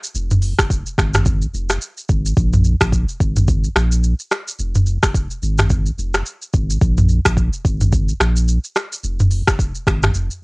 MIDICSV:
0, 0, Header, 1, 3, 480
1, 0, Start_track
1, 0, Tempo, 555556
1, 127, Time_signature, 4, 2, 24, 8
1, 9017, End_track
2, 0, Start_track
2, 0, Title_t, "Sub bass"
2, 0, Program_c, 0, 38
2, 126, Note_on_c, 0, 29, 111
2, 457, Note_off_c, 0, 29, 0
2, 508, Note_on_c, 0, 29, 96
2, 716, Note_off_c, 0, 29, 0
2, 847, Note_on_c, 0, 32, 94
2, 1266, Note_off_c, 0, 32, 0
2, 1327, Note_on_c, 0, 29, 103
2, 1536, Note_off_c, 0, 29, 0
2, 1809, Note_on_c, 0, 32, 99
2, 2017, Note_off_c, 0, 32, 0
2, 2048, Note_on_c, 0, 34, 107
2, 2378, Note_off_c, 0, 34, 0
2, 2428, Note_on_c, 0, 34, 81
2, 2636, Note_off_c, 0, 34, 0
2, 2767, Note_on_c, 0, 32, 87
2, 3186, Note_off_c, 0, 32, 0
2, 3247, Note_on_c, 0, 34, 109
2, 3578, Note_off_c, 0, 34, 0
2, 3967, Note_on_c, 0, 29, 114
2, 4298, Note_off_c, 0, 29, 0
2, 4347, Note_on_c, 0, 29, 92
2, 4556, Note_off_c, 0, 29, 0
2, 4687, Note_on_c, 0, 32, 97
2, 5105, Note_off_c, 0, 32, 0
2, 5167, Note_on_c, 0, 29, 101
2, 5376, Note_off_c, 0, 29, 0
2, 5648, Note_on_c, 0, 32, 97
2, 5857, Note_off_c, 0, 32, 0
2, 5887, Note_on_c, 0, 34, 110
2, 6218, Note_off_c, 0, 34, 0
2, 6268, Note_on_c, 0, 34, 86
2, 6476, Note_off_c, 0, 34, 0
2, 6607, Note_on_c, 0, 32, 88
2, 7026, Note_off_c, 0, 32, 0
2, 7087, Note_on_c, 0, 34, 105
2, 7418, Note_off_c, 0, 34, 0
2, 7806, Note_on_c, 0, 29, 110
2, 8137, Note_off_c, 0, 29, 0
2, 8187, Note_on_c, 0, 29, 86
2, 8396, Note_off_c, 0, 29, 0
2, 8527, Note_on_c, 0, 32, 90
2, 8736, Note_off_c, 0, 32, 0
2, 8766, Note_on_c, 0, 29, 98
2, 8888, Note_off_c, 0, 29, 0
2, 9017, End_track
3, 0, Start_track
3, 0, Title_t, "Drums"
3, 30, Note_on_c, 9, 82, 97
3, 117, Note_off_c, 9, 82, 0
3, 127, Note_on_c, 9, 82, 62
3, 214, Note_off_c, 9, 82, 0
3, 265, Note_on_c, 9, 82, 59
3, 269, Note_on_c, 9, 45, 98
3, 351, Note_off_c, 9, 82, 0
3, 356, Note_off_c, 9, 45, 0
3, 363, Note_on_c, 9, 46, 51
3, 363, Note_on_c, 9, 82, 52
3, 449, Note_off_c, 9, 46, 0
3, 449, Note_off_c, 9, 82, 0
3, 506, Note_on_c, 9, 37, 122
3, 508, Note_on_c, 9, 36, 100
3, 508, Note_on_c, 9, 82, 94
3, 510, Note_on_c, 9, 26, 99
3, 593, Note_off_c, 9, 37, 0
3, 594, Note_off_c, 9, 36, 0
3, 594, Note_off_c, 9, 82, 0
3, 597, Note_off_c, 9, 26, 0
3, 606, Note_on_c, 9, 36, 90
3, 610, Note_on_c, 9, 82, 86
3, 693, Note_off_c, 9, 36, 0
3, 697, Note_off_c, 9, 82, 0
3, 745, Note_on_c, 9, 82, 56
3, 832, Note_off_c, 9, 82, 0
3, 847, Note_on_c, 9, 36, 96
3, 849, Note_on_c, 9, 82, 59
3, 852, Note_on_c, 9, 37, 93
3, 856, Note_on_c, 9, 26, 73
3, 933, Note_off_c, 9, 36, 0
3, 936, Note_off_c, 9, 82, 0
3, 938, Note_off_c, 9, 37, 0
3, 943, Note_off_c, 9, 26, 0
3, 984, Note_on_c, 9, 82, 90
3, 987, Note_on_c, 9, 45, 89
3, 992, Note_on_c, 9, 37, 106
3, 996, Note_on_c, 9, 26, 84
3, 1070, Note_off_c, 9, 82, 0
3, 1074, Note_off_c, 9, 45, 0
3, 1078, Note_off_c, 9, 37, 0
3, 1082, Note_off_c, 9, 26, 0
3, 1084, Note_on_c, 9, 82, 75
3, 1088, Note_on_c, 9, 36, 96
3, 1170, Note_off_c, 9, 82, 0
3, 1174, Note_off_c, 9, 36, 0
3, 1224, Note_on_c, 9, 82, 53
3, 1311, Note_off_c, 9, 82, 0
3, 1332, Note_on_c, 9, 82, 55
3, 1419, Note_off_c, 9, 82, 0
3, 1464, Note_on_c, 9, 82, 92
3, 1467, Note_on_c, 9, 37, 87
3, 1471, Note_on_c, 9, 26, 73
3, 1550, Note_off_c, 9, 82, 0
3, 1554, Note_off_c, 9, 37, 0
3, 1558, Note_off_c, 9, 26, 0
3, 1568, Note_on_c, 9, 82, 83
3, 1654, Note_off_c, 9, 82, 0
3, 1705, Note_on_c, 9, 82, 58
3, 1792, Note_off_c, 9, 82, 0
3, 1805, Note_on_c, 9, 82, 47
3, 1808, Note_on_c, 9, 36, 96
3, 1891, Note_off_c, 9, 82, 0
3, 1895, Note_off_c, 9, 36, 0
3, 1950, Note_on_c, 9, 82, 97
3, 2037, Note_off_c, 9, 82, 0
3, 2047, Note_on_c, 9, 36, 119
3, 2048, Note_on_c, 9, 82, 64
3, 2134, Note_off_c, 9, 36, 0
3, 2135, Note_off_c, 9, 82, 0
3, 2186, Note_on_c, 9, 82, 56
3, 2190, Note_on_c, 9, 45, 100
3, 2272, Note_off_c, 9, 82, 0
3, 2277, Note_off_c, 9, 45, 0
3, 2283, Note_on_c, 9, 82, 48
3, 2370, Note_off_c, 9, 82, 0
3, 2426, Note_on_c, 9, 37, 125
3, 2427, Note_on_c, 9, 36, 100
3, 2428, Note_on_c, 9, 82, 93
3, 2430, Note_on_c, 9, 26, 99
3, 2513, Note_off_c, 9, 37, 0
3, 2514, Note_off_c, 9, 36, 0
3, 2514, Note_off_c, 9, 82, 0
3, 2517, Note_off_c, 9, 26, 0
3, 2526, Note_on_c, 9, 36, 92
3, 2530, Note_on_c, 9, 82, 79
3, 2612, Note_off_c, 9, 36, 0
3, 2617, Note_off_c, 9, 82, 0
3, 2666, Note_on_c, 9, 82, 54
3, 2752, Note_off_c, 9, 82, 0
3, 2767, Note_on_c, 9, 36, 96
3, 2770, Note_on_c, 9, 82, 58
3, 2854, Note_off_c, 9, 36, 0
3, 2856, Note_off_c, 9, 82, 0
3, 2905, Note_on_c, 9, 82, 87
3, 2908, Note_on_c, 9, 45, 92
3, 2991, Note_off_c, 9, 82, 0
3, 2995, Note_off_c, 9, 45, 0
3, 3004, Note_on_c, 9, 82, 76
3, 3008, Note_on_c, 9, 36, 99
3, 3090, Note_off_c, 9, 82, 0
3, 3094, Note_off_c, 9, 36, 0
3, 3145, Note_on_c, 9, 82, 53
3, 3231, Note_off_c, 9, 82, 0
3, 3247, Note_on_c, 9, 37, 108
3, 3251, Note_on_c, 9, 26, 84
3, 3252, Note_on_c, 9, 82, 57
3, 3333, Note_off_c, 9, 37, 0
3, 3338, Note_off_c, 9, 26, 0
3, 3338, Note_off_c, 9, 82, 0
3, 3385, Note_on_c, 9, 82, 94
3, 3471, Note_off_c, 9, 82, 0
3, 3487, Note_on_c, 9, 82, 86
3, 3573, Note_off_c, 9, 82, 0
3, 3624, Note_on_c, 9, 82, 56
3, 3711, Note_off_c, 9, 82, 0
3, 3725, Note_on_c, 9, 82, 48
3, 3728, Note_on_c, 9, 37, 89
3, 3732, Note_on_c, 9, 26, 74
3, 3811, Note_off_c, 9, 82, 0
3, 3814, Note_off_c, 9, 37, 0
3, 3818, Note_off_c, 9, 26, 0
3, 3869, Note_on_c, 9, 82, 102
3, 3955, Note_off_c, 9, 82, 0
3, 3966, Note_on_c, 9, 82, 60
3, 4053, Note_off_c, 9, 82, 0
3, 4104, Note_on_c, 9, 82, 58
3, 4108, Note_on_c, 9, 45, 98
3, 4190, Note_off_c, 9, 82, 0
3, 4195, Note_off_c, 9, 45, 0
3, 4201, Note_on_c, 9, 82, 51
3, 4288, Note_off_c, 9, 82, 0
3, 4345, Note_on_c, 9, 37, 122
3, 4346, Note_on_c, 9, 82, 94
3, 4347, Note_on_c, 9, 36, 102
3, 4349, Note_on_c, 9, 26, 99
3, 4431, Note_off_c, 9, 37, 0
3, 4433, Note_off_c, 9, 36, 0
3, 4433, Note_off_c, 9, 82, 0
3, 4435, Note_off_c, 9, 26, 0
3, 4445, Note_on_c, 9, 36, 94
3, 4449, Note_on_c, 9, 82, 84
3, 4532, Note_off_c, 9, 36, 0
3, 4536, Note_off_c, 9, 82, 0
3, 4584, Note_on_c, 9, 82, 57
3, 4670, Note_off_c, 9, 82, 0
3, 4688, Note_on_c, 9, 82, 57
3, 4775, Note_off_c, 9, 82, 0
3, 4823, Note_on_c, 9, 82, 90
3, 4826, Note_on_c, 9, 45, 90
3, 4831, Note_on_c, 9, 37, 103
3, 4835, Note_on_c, 9, 26, 82
3, 4909, Note_off_c, 9, 82, 0
3, 4913, Note_off_c, 9, 45, 0
3, 4917, Note_off_c, 9, 37, 0
3, 4921, Note_off_c, 9, 26, 0
3, 4922, Note_on_c, 9, 82, 76
3, 4927, Note_on_c, 9, 36, 95
3, 5009, Note_off_c, 9, 82, 0
3, 5014, Note_off_c, 9, 36, 0
3, 5063, Note_on_c, 9, 82, 50
3, 5149, Note_off_c, 9, 82, 0
3, 5171, Note_on_c, 9, 82, 55
3, 5258, Note_off_c, 9, 82, 0
3, 5304, Note_on_c, 9, 82, 93
3, 5307, Note_on_c, 9, 37, 93
3, 5311, Note_on_c, 9, 26, 72
3, 5390, Note_off_c, 9, 82, 0
3, 5394, Note_off_c, 9, 37, 0
3, 5398, Note_off_c, 9, 26, 0
3, 5407, Note_on_c, 9, 82, 83
3, 5493, Note_off_c, 9, 82, 0
3, 5545, Note_on_c, 9, 82, 61
3, 5631, Note_off_c, 9, 82, 0
3, 5645, Note_on_c, 9, 82, 47
3, 5648, Note_on_c, 9, 36, 97
3, 5731, Note_off_c, 9, 82, 0
3, 5734, Note_off_c, 9, 36, 0
3, 5789, Note_on_c, 9, 82, 98
3, 5876, Note_off_c, 9, 82, 0
3, 5887, Note_on_c, 9, 36, 123
3, 5887, Note_on_c, 9, 82, 62
3, 5973, Note_off_c, 9, 36, 0
3, 5973, Note_off_c, 9, 82, 0
3, 6025, Note_on_c, 9, 82, 57
3, 6029, Note_on_c, 9, 45, 100
3, 6111, Note_off_c, 9, 82, 0
3, 6116, Note_off_c, 9, 45, 0
3, 6122, Note_on_c, 9, 82, 52
3, 6208, Note_off_c, 9, 82, 0
3, 6266, Note_on_c, 9, 37, 124
3, 6267, Note_on_c, 9, 36, 102
3, 6267, Note_on_c, 9, 82, 98
3, 6270, Note_on_c, 9, 26, 102
3, 6352, Note_off_c, 9, 37, 0
3, 6354, Note_off_c, 9, 36, 0
3, 6354, Note_off_c, 9, 82, 0
3, 6356, Note_off_c, 9, 26, 0
3, 6366, Note_on_c, 9, 36, 91
3, 6370, Note_on_c, 9, 82, 85
3, 6452, Note_off_c, 9, 36, 0
3, 6456, Note_off_c, 9, 82, 0
3, 6506, Note_on_c, 9, 82, 53
3, 6592, Note_off_c, 9, 82, 0
3, 6607, Note_on_c, 9, 36, 97
3, 6610, Note_on_c, 9, 82, 59
3, 6694, Note_off_c, 9, 36, 0
3, 6697, Note_off_c, 9, 82, 0
3, 6745, Note_on_c, 9, 82, 87
3, 6748, Note_on_c, 9, 45, 89
3, 6831, Note_off_c, 9, 82, 0
3, 6835, Note_off_c, 9, 45, 0
3, 6845, Note_on_c, 9, 82, 79
3, 6848, Note_on_c, 9, 36, 95
3, 6931, Note_off_c, 9, 82, 0
3, 6934, Note_off_c, 9, 36, 0
3, 6985, Note_on_c, 9, 82, 50
3, 7071, Note_off_c, 9, 82, 0
3, 7087, Note_on_c, 9, 37, 107
3, 7091, Note_on_c, 9, 26, 86
3, 7092, Note_on_c, 9, 82, 53
3, 7174, Note_off_c, 9, 37, 0
3, 7178, Note_off_c, 9, 26, 0
3, 7179, Note_off_c, 9, 82, 0
3, 7225, Note_on_c, 9, 82, 94
3, 7311, Note_off_c, 9, 82, 0
3, 7328, Note_on_c, 9, 82, 85
3, 7414, Note_off_c, 9, 82, 0
3, 7466, Note_on_c, 9, 82, 61
3, 7552, Note_off_c, 9, 82, 0
3, 7565, Note_on_c, 9, 82, 48
3, 7568, Note_on_c, 9, 37, 91
3, 7572, Note_on_c, 9, 26, 70
3, 7651, Note_off_c, 9, 82, 0
3, 7654, Note_off_c, 9, 37, 0
3, 7658, Note_off_c, 9, 26, 0
3, 7710, Note_on_c, 9, 82, 100
3, 7796, Note_off_c, 9, 82, 0
3, 7807, Note_on_c, 9, 82, 62
3, 7893, Note_off_c, 9, 82, 0
3, 7945, Note_on_c, 9, 82, 60
3, 7949, Note_on_c, 9, 45, 102
3, 8031, Note_off_c, 9, 82, 0
3, 8036, Note_off_c, 9, 45, 0
3, 8042, Note_on_c, 9, 46, 50
3, 8042, Note_on_c, 9, 82, 52
3, 8129, Note_off_c, 9, 46, 0
3, 8129, Note_off_c, 9, 82, 0
3, 8186, Note_on_c, 9, 37, 125
3, 8188, Note_on_c, 9, 36, 103
3, 8188, Note_on_c, 9, 82, 94
3, 8190, Note_on_c, 9, 26, 98
3, 8272, Note_off_c, 9, 37, 0
3, 8274, Note_off_c, 9, 36, 0
3, 8274, Note_off_c, 9, 82, 0
3, 8277, Note_off_c, 9, 26, 0
3, 8286, Note_on_c, 9, 36, 90
3, 8290, Note_on_c, 9, 82, 84
3, 8372, Note_off_c, 9, 36, 0
3, 8377, Note_off_c, 9, 82, 0
3, 8424, Note_on_c, 9, 82, 56
3, 8510, Note_off_c, 9, 82, 0
3, 8527, Note_on_c, 9, 36, 97
3, 8529, Note_on_c, 9, 82, 59
3, 8532, Note_on_c, 9, 37, 91
3, 8536, Note_on_c, 9, 26, 73
3, 8613, Note_off_c, 9, 36, 0
3, 8616, Note_off_c, 9, 82, 0
3, 8618, Note_off_c, 9, 37, 0
3, 8622, Note_off_c, 9, 26, 0
3, 8663, Note_on_c, 9, 82, 89
3, 8667, Note_on_c, 9, 45, 91
3, 8671, Note_on_c, 9, 37, 110
3, 8676, Note_on_c, 9, 26, 83
3, 8750, Note_off_c, 9, 82, 0
3, 8753, Note_off_c, 9, 45, 0
3, 8758, Note_off_c, 9, 37, 0
3, 8762, Note_off_c, 9, 26, 0
3, 8764, Note_on_c, 9, 82, 75
3, 8850, Note_off_c, 9, 82, 0
3, 8904, Note_on_c, 9, 82, 51
3, 8991, Note_off_c, 9, 82, 0
3, 9017, End_track
0, 0, End_of_file